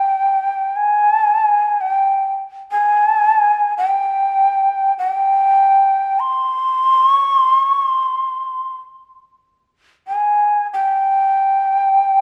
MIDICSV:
0, 0, Header, 1, 2, 480
1, 0, Start_track
1, 0, Tempo, 500000
1, 11722, End_track
2, 0, Start_track
2, 0, Title_t, "Shakuhachi"
2, 0, Program_c, 0, 77
2, 0, Note_on_c, 0, 79, 82
2, 730, Note_on_c, 0, 80, 82
2, 745, Note_off_c, 0, 79, 0
2, 1735, Note_on_c, 0, 79, 74
2, 1749, Note_off_c, 0, 80, 0
2, 2277, Note_off_c, 0, 79, 0
2, 2603, Note_on_c, 0, 80, 94
2, 3592, Note_off_c, 0, 80, 0
2, 3624, Note_on_c, 0, 79, 88
2, 4743, Note_off_c, 0, 79, 0
2, 4784, Note_on_c, 0, 78, 85
2, 4900, Note_off_c, 0, 78, 0
2, 4900, Note_on_c, 0, 79, 85
2, 5947, Note_on_c, 0, 84, 92
2, 5962, Note_off_c, 0, 79, 0
2, 6821, Note_off_c, 0, 84, 0
2, 6821, Note_on_c, 0, 85, 92
2, 7061, Note_off_c, 0, 85, 0
2, 7061, Note_on_c, 0, 84, 92
2, 7310, Note_off_c, 0, 84, 0
2, 7310, Note_on_c, 0, 85, 92
2, 7550, Note_off_c, 0, 85, 0
2, 7550, Note_on_c, 0, 84, 92
2, 8417, Note_off_c, 0, 84, 0
2, 9669, Note_on_c, 0, 80, 75
2, 10246, Note_off_c, 0, 80, 0
2, 10302, Note_on_c, 0, 79, 80
2, 11722, Note_off_c, 0, 79, 0
2, 11722, End_track
0, 0, End_of_file